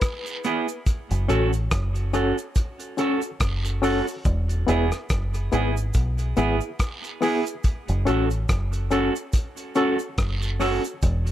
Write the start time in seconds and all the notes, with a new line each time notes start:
Already playing: B4
0.01 kick, cross-stick, closed hi-hat, cabasa, long guiro
0.26 closed hi-hat, cabasa
0.44 B3 E4 G#4, closed hi-hat, cabasa
0.68 cabasa
0.86 kick, closed hi-hat, cabasa
1.11 F#1, closed hi-hat, cabasa
1.28 A1 C#4 F#4 A4, closed hi-hat, cabasa
1.53 closed hi-hat, cabasa
1.71 F#1, kick, cross-stick, closed hi-hat, cabasa
1.95 closed hi-hat, cabasa
2.13 C#4 F#4 A4, closed hi-hat, cabasa
2.38 cabasa
2.55 kick, closed hi-hat, cabasa
2.80 closed hi-hat, cabasa
2.97 C#4 F#4 A4, closed hi-hat, cabasa
3.22 F#4 A4, cabasa
3.40 F#1, kick, cross-stick, closed hi-hat, cabasa, long guiro
3.65 closed hi-hat, cabasa
3.82 C#4 F#4 A4, open hi-hat, cabasa
4.07 F#4 A4, cabasa
4.25 E1, kick, closed hi-hat, cabasa
4.49 closed hi-hat, cabasa
4.67 E1 B3 E4 G#4, closed hi-hat, cabasa
4.92 cross-stick, closed hi-hat, cabasa
5.10 F#1, kick, cross-stick, closed hi-hat, cabasa
5.34 closed hi-hat, cabasa
5.52 G#1 B3 E4 G#4, closed hi-hat, cabasa
5.77 cabasa
5.94 B1, kick, closed hi-hat, cabasa
6.18 closed hi-hat, cabasa
6.37 G#1 B3 E4 G#4, closed hi-hat, cabasa
6.61 E4 G#4, cabasa
6.79 kick, cross-stick, closed hi-hat, cabasa, long guiro
7.04 closed hi-hat, cabasa
7.21 B3 E4 G#4, cross-stick, open hi-hat, cabasa
7.45 E4 G#4, closed hi-hat, cabasa
7.64 kick, closed hi-hat, cabasa
7.88 F#1, closed hi-hat, cabasa
8.05 A1 C#4 F#4 A4, closed hi-hat, cabasa
8.30 closed hi-hat, cabasa
8.49 F#1, kick, cross-stick, closed hi-hat, cabasa
8.73 closed hi-hat, cabasa
8.91 C#4 F#4 A4, closed hi-hat, cabasa
9.16 cabasa
9.33 kick, closed hi-hat, cabasa
9.57 closed hi-hat, cabasa
9.75 C#4 F#4 A4, closed hi-hat, cabasa
9.99 F#4 A4, cabasa
10.18 F#1, kick, cross-stick, closed hi-hat, cabasa, long guiro
10.42 closed hi-hat, cabasa
10.60 C#4 F#4 A4, cross-stick, open hi-hat, cabasa
10.84 F#4 A4, closed hi-hat, cabasa
11.02 E1, kick, closed hi-hat, cabasa
11.27 closed hi-hat, cabasa